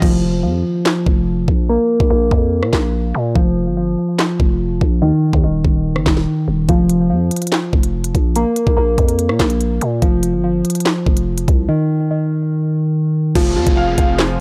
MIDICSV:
0, 0, Header, 1, 7, 480
1, 0, Start_track
1, 0, Key_signature, -4, "minor"
1, 0, Tempo, 416667
1, 24, Time_signature, 4, 2, 24, 8
1, 16591, End_track
2, 0, Start_track
2, 0, Title_t, "Grand piano"
2, 0, Program_c, 0, 0
2, 0, Control_c, 0, 64, 127
2, 39, Control_c, 0, 64, 0
2, 15384, Note_on_c, 0, 53, 96
2, 15611, Control_c, 0, 64, 127
2, 15623, Note_on_c, 0, 65, 83
2, 15866, Note_on_c, 0, 77, 94
2, 16088, Note_off_c, 0, 77, 0
2, 16105, Note_on_c, 0, 77, 83
2, 16325, Note_off_c, 0, 53, 0
2, 16342, Note_on_c, 0, 53, 93
2, 16591, Note_off_c, 0, 53, 0
2, 16591, Note_off_c, 0, 65, 0
2, 16591, Note_off_c, 0, 77, 0
2, 16591, End_track
3, 0, Start_track
3, 0, Title_t, "Analog synth pad"
3, 0, Program_c, 1, 89
3, 15384, Note_on_c, 1, 53, 77
3, 15384, Note_on_c, 1, 68, 83
3, 15385, Note_on_c, 1, 60, 70
3, 16591, Note_off_c, 1, 53, 0
3, 16591, Note_off_c, 1, 60, 0
3, 16591, Note_off_c, 1, 68, 0
3, 16591, End_track
4, 0, Start_track
4, 0, Title_t, "Synth keys"
4, 0, Program_c, 2, 88
4, 26, Note_on_c, 2, 53, 95
4, 483, Note_off_c, 2, 53, 0
4, 497, Note_on_c, 2, 53, 78
4, 1941, Note_off_c, 2, 53, 0
4, 1951, Note_on_c, 2, 58, 94
4, 2406, Note_off_c, 2, 58, 0
4, 2420, Note_on_c, 2, 58, 85
4, 3862, Note_off_c, 2, 58, 0
4, 3863, Note_on_c, 2, 53, 91
4, 4330, Note_off_c, 2, 53, 0
4, 4344, Note_on_c, 2, 53, 78
4, 5782, Note_on_c, 2, 51, 102
4, 5784, Note_off_c, 2, 53, 0
4, 6253, Note_off_c, 2, 51, 0
4, 6267, Note_on_c, 2, 51, 79
4, 7705, Note_off_c, 2, 51, 0
4, 7706, Note_on_c, 2, 53, 94
4, 8164, Note_off_c, 2, 53, 0
4, 8178, Note_on_c, 2, 53, 78
4, 9621, Note_off_c, 2, 53, 0
4, 9632, Note_on_c, 2, 58, 92
4, 10086, Note_off_c, 2, 58, 0
4, 10099, Note_on_c, 2, 58, 83
4, 11542, Note_off_c, 2, 58, 0
4, 11544, Note_on_c, 2, 53, 89
4, 12012, Note_off_c, 2, 53, 0
4, 12026, Note_on_c, 2, 53, 77
4, 13464, Note_on_c, 2, 51, 95
4, 13465, Note_off_c, 2, 53, 0
4, 13935, Note_off_c, 2, 51, 0
4, 13949, Note_on_c, 2, 51, 77
4, 15386, Note_off_c, 2, 51, 0
4, 15386, Note_on_c, 2, 53, 96
4, 15843, Note_off_c, 2, 53, 0
4, 15856, Note_on_c, 2, 53, 84
4, 16591, Note_off_c, 2, 53, 0
4, 16591, End_track
5, 0, Start_track
5, 0, Title_t, "808-style bass"
5, 0, Program_c, 3, 38
5, 25, Note_on_c, 3, 29, 105
5, 505, Note_on_c, 3, 41, 103
5, 522, Note_off_c, 3, 29, 0
5, 733, Note_off_c, 3, 41, 0
5, 1226, Note_on_c, 3, 29, 106
5, 1686, Note_off_c, 3, 29, 0
5, 1705, Note_on_c, 3, 34, 99
5, 2050, Note_off_c, 3, 34, 0
5, 2305, Note_on_c, 3, 34, 101
5, 2420, Note_off_c, 3, 34, 0
5, 2425, Note_on_c, 3, 34, 110
5, 2655, Note_off_c, 3, 34, 0
5, 2665, Note_on_c, 3, 41, 112
5, 3024, Note_on_c, 3, 46, 101
5, 3042, Note_off_c, 3, 41, 0
5, 3138, Note_off_c, 3, 46, 0
5, 3146, Note_on_c, 3, 34, 108
5, 3606, Note_off_c, 3, 34, 0
5, 3624, Note_on_c, 3, 46, 107
5, 3854, Note_off_c, 3, 46, 0
5, 3865, Note_on_c, 3, 29, 108
5, 4225, Note_on_c, 3, 31, 97
5, 4242, Note_off_c, 3, 29, 0
5, 4567, Note_off_c, 3, 31, 0
5, 5066, Note_on_c, 3, 29, 106
5, 5526, Note_off_c, 3, 29, 0
5, 5544, Note_on_c, 3, 34, 106
5, 5784, Note_on_c, 3, 39, 104
5, 5801, Note_off_c, 3, 34, 0
5, 5898, Note_off_c, 3, 39, 0
5, 6143, Note_on_c, 3, 39, 101
5, 6259, Note_off_c, 3, 39, 0
5, 6264, Note_on_c, 3, 27, 108
5, 6495, Note_off_c, 3, 27, 0
5, 6504, Note_on_c, 3, 27, 111
5, 6863, Note_on_c, 3, 31, 101
5, 6880, Note_off_c, 3, 27, 0
5, 6978, Note_off_c, 3, 31, 0
5, 6985, Note_on_c, 3, 27, 104
5, 7215, Note_off_c, 3, 27, 0
5, 7463, Note_on_c, 3, 27, 104
5, 7694, Note_off_c, 3, 27, 0
5, 7704, Note_on_c, 3, 29, 108
5, 8183, Note_on_c, 3, 41, 103
5, 8201, Note_off_c, 3, 29, 0
5, 8412, Note_off_c, 3, 41, 0
5, 8906, Note_on_c, 3, 29, 110
5, 9366, Note_off_c, 3, 29, 0
5, 9385, Note_on_c, 3, 34, 100
5, 9730, Note_off_c, 3, 34, 0
5, 9985, Note_on_c, 3, 34, 101
5, 10100, Note_off_c, 3, 34, 0
5, 10104, Note_on_c, 3, 34, 111
5, 10335, Note_off_c, 3, 34, 0
5, 10345, Note_on_c, 3, 41, 107
5, 10705, Note_on_c, 3, 46, 101
5, 10722, Note_off_c, 3, 41, 0
5, 10819, Note_off_c, 3, 46, 0
5, 10826, Note_on_c, 3, 34, 106
5, 11286, Note_off_c, 3, 34, 0
5, 11305, Note_on_c, 3, 46, 99
5, 11535, Note_off_c, 3, 46, 0
5, 11545, Note_on_c, 3, 29, 108
5, 11904, Note_on_c, 3, 31, 95
5, 11921, Note_off_c, 3, 29, 0
5, 12246, Note_off_c, 3, 31, 0
5, 12746, Note_on_c, 3, 29, 104
5, 13206, Note_off_c, 3, 29, 0
5, 13225, Note_on_c, 3, 36, 105
5, 13455, Note_off_c, 3, 36, 0
5, 15384, Note_on_c, 3, 29, 107
5, 15625, Note_on_c, 3, 41, 96
5, 15642, Note_off_c, 3, 29, 0
5, 15738, Note_off_c, 3, 41, 0
5, 15744, Note_on_c, 3, 29, 102
5, 16090, Note_off_c, 3, 29, 0
5, 16104, Note_on_c, 3, 29, 109
5, 16591, Note_off_c, 3, 29, 0
5, 16591, End_track
6, 0, Start_track
6, 0, Title_t, "Downlifter"
6, 0, Program_c, 4, 103
6, 15384, Note_on_c, 4, 60, 87
6, 16591, Note_off_c, 4, 60, 0
6, 16591, End_track
7, 0, Start_track
7, 0, Title_t, "Drums"
7, 25, Note_on_c, 9, 36, 112
7, 25, Note_on_c, 9, 49, 94
7, 140, Note_off_c, 9, 36, 0
7, 141, Note_off_c, 9, 49, 0
7, 984, Note_on_c, 9, 38, 118
7, 992, Note_on_c, 9, 39, 92
7, 1099, Note_off_c, 9, 38, 0
7, 1107, Note_off_c, 9, 39, 0
7, 1226, Note_on_c, 9, 36, 94
7, 1342, Note_off_c, 9, 36, 0
7, 1705, Note_on_c, 9, 36, 98
7, 1820, Note_off_c, 9, 36, 0
7, 2305, Note_on_c, 9, 36, 96
7, 2420, Note_off_c, 9, 36, 0
7, 2665, Note_on_c, 9, 36, 91
7, 2780, Note_off_c, 9, 36, 0
7, 3025, Note_on_c, 9, 37, 93
7, 3141, Note_off_c, 9, 37, 0
7, 3145, Note_on_c, 9, 38, 125
7, 3146, Note_on_c, 9, 36, 94
7, 3152, Note_on_c, 9, 39, 95
7, 3260, Note_off_c, 9, 38, 0
7, 3262, Note_off_c, 9, 36, 0
7, 3267, Note_off_c, 9, 39, 0
7, 3865, Note_on_c, 9, 36, 116
7, 3981, Note_off_c, 9, 36, 0
7, 4824, Note_on_c, 9, 38, 113
7, 4832, Note_on_c, 9, 39, 97
7, 4939, Note_off_c, 9, 38, 0
7, 4947, Note_off_c, 9, 39, 0
7, 5066, Note_on_c, 9, 36, 96
7, 5181, Note_off_c, 9, 36, 0
7, 5544, Note_on_c, 9, 36, 95
7, 5659, Note_off_c, 9, 36, 0
7, 6144, Note_on_c, 9, 36, 93
7, 6259, Note_off_c, 9, 36, 0
7, 6504, Note_on_c, 9, 36, 93
7, 6619, Note_off_c, 9, 36, 0
7, 6864, Note_on_c, 9, 37, 95
7, 6979, Note_off_c, 9, 37, 0
7, 6982, Note_on_c, 9, 38, 119
7, 6985, Note_on_c, 9, 36, 93
7, 6990, Note_on_c, 9, 39, 100
7, 7097, Note_off_c, 9, 38, 0
7, 7100, Note_off_c, 9, 36, 0
7, 7104, Note_on_c, 9, 38, 71
7, 7105, Note_off_c, 9, 39, 0
7, 7219, Note_off_c, 9, 38, 0
7, 7703, Note_on_c, 9, 42, 77
7, 7704, Note_on_c, 9, 36, 110
7, 7818, Note_off_c, 9, 42, 0
7, 7819, Note_off_c, 9, 36, 0
7, 7943, Note_on_c, 9, 42, 89
7, 8058, Note_off_c, 9, 42, 0
7, 8423, Note_on_c, 9, 42, 74
7, 8484, Note_off_c, 9, 42, 0
7, 8484, Note_on_c, 9, 42, 72
7, 8545, Note_off_c, 9, 42, 0
7, 8545, Note_on_c, 9, 42, 74
7, 8604, Note_off_c, 9, 42, 0
7, 8604, Note_on_c, 9, 42, 73
7, 8663, Note_on_c, 9, 38, 118
7, 8670, Note_on_c, 9, 39, 93
7, 8719, Note_off_c, 9, 42, 0
7, 8778, Note_off_c, 9, 38, 0
7, 8786, Note_off_c, 9, 39, 0
7, 8906, Note_on_c, 9, 36, 94
7, 9021, Note_off_c, 9, 36, 0
7, 9024, Note_on_c, 9, 42, 84
7, 9139, Note_off_c, 9, 42, 0
7, 9265, Note_on_c, 9, 42, 89
7, 9380, Note_off_c, 9, 42, 0
7, 9385, Note_on_c, 9, 36, 99
7, 9386, Note_on_c, 9, 42, 71
7, 9500, Note_off_c, 9, 36, 0
7, 9502, Note_off_c, 9, 42, 0
7, 9626, Note_on_c, 9, 42, 76
7, 9741, Note_off_c, 9, 42, 0
7, 9864, Note_on_c, 9, 42, 86
7, 9979, Note_off_c, 9, 42, 0
7, 9985, Note_on_c, 9, 36, 95
7, 10100, Note_off_c, 9, 36, 0
7, 10345, Note_on_c, 9, 36, 92
7, 10345, Note_on_c, 9, 42, 54
7, 10460, Note_off_c, 9, 36, 0
7, 10460, Note_off_c, 9, 42, 0
7, 10466, Note_on_c, 9, 42, 91
7, 10581, Note_off_c, 9, 42, 0
7, 10584, Note_on_c, 9, 42, 81
7, 10699, Note_off_c, 9, 42, 0
7, 10705, Note_on_c, 9, 37, 94
7, 10820, Note_off_c, 9, 37, 0
7, 10824, Note_on_c, 9, 38, 120
7, 10824, Note_on_c, 9, 42, 74
7, 10826, Note_on_c, 9, 36, 93
7, 10832, Note_on_c, 9, 39, 98
7, 10939, Note_off_c, 9, 38, 0
7, 10939, Note_off_c, 9, 42, 0
7, 10942, Note_off_c, 9, 36, 0
7, 10943, Note_on_c, 9, 42, 81
7, 10947, Note_off_c, 9, 39, 0
7, 11058, Note_off_c, 9, 42, 0
7, 11065, Note_on_c, 9, 42, 61
7, 11181, Note_off_c, 9, 42, 0
7, 11306, Note_on_c, 9, 42, 73
7, 11421, Note_off_c, 9, 42, 0
7, 11545, Note_on_c, 9, 36, 110
7, 11545, Note_on_c, 9, 42, 77
7, 11660, Note_off_c, 9, 42, 0
7, 11661, Note_off_c, 9, 36, 0
7, 11784, Note_on_c, 9, 42, 88
7, 11899, Note_off_c, 9, 42, 0
7, 12266, Note_on_c, 9, 42, 73
7, 12325, Note_off_c, 9, 42, 0
7, 12325, Note_on_c, 9, 42, 75
7, 12385, Note_off_c, 9, 42, 0
7, 12385, Note_on_c, 9, 42, 71
7, 12445, Note_off_c, 9, 42, 0
7, 12445, Note_on_c, 9, 42, 75
7, 12505, Note_on_c, 9, 38, 118
7, 12512, Note_on_c, 9, 39, 90
7, 12561, Note_off_c, 9, 42, 0
7, 12620, Note_off_c, 9, 38, 0
7, 12628, Note_off_c, 9, 39, 0
7, 12746, Note_on_c, 9, 36, 92
7, 12861, Note_off_c, 9, 36, 0
7, 12864, Note_on_c, 9, 42, 82
7, 12980, Note_off_c, 9, 42, 0
7, 13105, Note_on_c, 9, 42, 88
7, 13220, Note_off_c, 9, 42, 0
7, 13225, Note_on_c, 9, 36, 101
7, 13227, Note_on_c, 9, 42, 72
7, 13340, Note_off_c, 9, 36, 0
7, 13342, Note_off_c, 9, 42, 0
7, 15384, Note_on_c, 9, 42, 76
7, 15385, Note_on_c, 9, 36, 116
7, 15385, Note_on_c, 9, 49, 105
7, 15500, Note_off_c, 9, 36, 0
7, 15500, Note_off_c, 9, 42, 0
7, 15500, Note_off_c, 9, 49, 0
7, 15743, Note_on_c, 9, 42, 82
7, 15744, Note_on_c, 9, 36, 97
7, 15858, Note_off_c, 9, 42, 0
7, 15859, Note_off_c, 9, 36, 0
7, 16103, Note_on_c, 9, 42, 94
7, 16104, Note_on_c, 9, 36, 92
7, 16218, Note_off_c, 9, 42, 0
7, 16219, Note_off_c, 9, 36, 0
7, 16343, Note_on_c, 9, 38, 125
7, 16351, Note_on_c, 9, 39, 95
7, 16458, Note_off_c, 9, 38, 0
7, 16466, Note_off_c, 9, 39, 0
7, 16591, End_track
0, 0, End_of_file